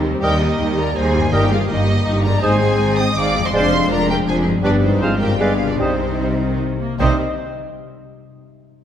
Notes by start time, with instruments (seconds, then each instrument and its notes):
Already playing: cello section D#2, double bass section D#2, french horn section G3 C4, harp C4 D#4 G4
0.04 harp D#3, viola section C4 G4
0.09 harp G3
0.14 harp A#3
0.18 harp D#4, violin section G4
0.22 double bass section D#2, cello section D#2, bassoon G3, viola section G3 D#4, french horn section A#3, clarinet A#4, flute A#4, cor anglais D#5, violin section G5
0.40 viola section A#3 G4, violin section D#4 D#5, flute G4
0.59 cello section D#2, double bass section D#2, viola section G3 D#4
0.77 viola section A#3 G4, violin section A#4 A#5, flute D5
0.94 cello section D#2, double bass section D#2, viola section G3 D#4, violin section G#4 G#5, flute C5
1.14 harp G2, viola section A#3 G4
1.20 harp A#3
1.24 harp D#4
1.32 double bass section G1, timpani G2, cello section G2, bassoon G3, viola section G3 D#4, french horn section G3, violin section G4 G5, clarinet A#4, flute A#4, cor anglais D#5
1.50 viola section A#3 G4, violin section F4 F5, flute G#4
1.68 double bass section G1, cello section G2, viola section G3 D#4, violin section D#4 D#5, flute G4
1.87 viola section A#3 G4
2.05 double bass section G1, cello section G2, viola section G3 D#4
2.24 harp G#2, viola section A#3 G4, violin section A#4 A#5, flute D5
2.30 harp G#3
2.35 harp C4
2.39 cello section G#2, viola section G#3 D#4, bassoon G#3, harp D#4, clarinet C5, flute C5, cor anglais D#5, violin section G#5
2.44 double bass section G#1, french horn section G#3 C4, violin section G#4
2.60 viola section C4 G#4
2.78 double bass section G#1, cello section G#2, viola section G#3 D#4
2.97 viola section C4 G#4, violin section D#5 D#6, flute G5
3.16 double bass section G#1, cello section G#2, viola section G#3 D#4, violin section D5 D6, flute F5
3.34 harp F2, viola section C4 G#4
3.42 harp G#3, violin section C5, flute D#5
3.46 harp C4, violin section C6
3.51 double bass section F1, viola section F3 D4, bassoon G#3, harp D4, violin section C5 C6, cor anglais D5, flute F5
3.55 cello section F2, french horn section D4, clarinet C5
3.72 viola section G#3 C4
3.90 double bass section F1, cello section F2, viola section F3 D4, violin section A#4 A#5, flute D5
4.09 viola section G#3 C4, violin section G4 G5, flute A#4
4.27 double bass section F1, cello section F2, viola section F3 D4, violin section G#4 G#5, flute C5
4.44 harp G2, viola section G#3 C4
4.51 harp G3
4.56 harp B3
4.60 double bass section G1, cello section G2, bassoon G3, viola section G3 B3, french horn section B3, harp D4, violin section D4, flute G4, clarinet B4, cor anglais D5
4.65 violin section D5
4.82 harp G#2, violin section C4 C5, flute D#4
4.89 harp C4
4.93 harp F4
5.01 double bass section G#1, cello section G#2, viola section F3 C4, bassoon G#3, french horn section C4 F4, clarinet C5, cor anglais F5
5.19 harp G2, violin section G4 G5, flute A#4
5.27 harp B3
5.32 harp D4
5.36 double bass section G1, viola section G3 B3, french horn section B3 G#4, violin section F4, harp G#4
5.40 cello section G2, bassoon G#3, flute G#4, clarinet B4, cor anglais D5, violin section F5
5.62 harp C3
5.66 harp C4, violin section D4 D5, flute F4
5.71 harp D#4
5.75 double bass section C2, viola section D#3 C4, violin section C4, french horn section C4, flute D#4, harp G4
5.79 cello section C3, bassoon G3, french horn section D#4, violin section C5, clarinet C5, cor anglais D#5
6.18 viola section G3
6.38 viola section D#3
6.80 viola section A#3
6.95 harp C3 C4, bassoon G3
6.99 double bass section C2, cello section C3, timpani C3, viola section D#3 C4, violin section C4 C5, french horn section C4 D#4, harp D#4, flute G4, clarinet C5, cor anglais D#5
7.03 harp G4 D#5